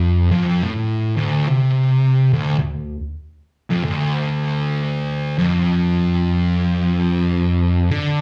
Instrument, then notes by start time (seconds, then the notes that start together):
distorted electric guitar
Already playing: F2
0.31 F2
0.64 A2
1.16 D2
1.48 C3
2.33 D2
2.59 D2
3.70 F2
3.85 D2
5.38 F2
7.91 D3